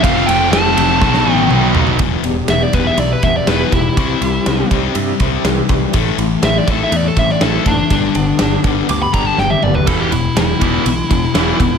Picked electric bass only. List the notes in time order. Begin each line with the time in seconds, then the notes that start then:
0.04 F1
0.27 F1
0.51 F1
0.76 F1
1.01 B1
1.26 A1
1.50 B1
1.75 B1
1.99 E1
2.24 E1
2.48 E1
2.73 E1
2.97 B1
3.23 E1
3.47 E1
3.72 E1
3.97 C2
4.21 C2
4.46 C2
4.71 C2
4.95 G2
5.20 C2
5.44 C2
5.70 C2
5.94 A1
6.18 A1
6.43 A1
6.67 A1
6.92 E2
7.16 A1
7.41 A1
7.66 F#1
7.90 G1
8.15 G1
8.40 G1
8.64 G1
8.89 D2
9.14 G1
9.38 G1
9.63 F#1
9.87 E1
10.12 E1
10.36 E1
10.61 E1
10.86 B1
11.11 E1
11.35 E1
11.60 E1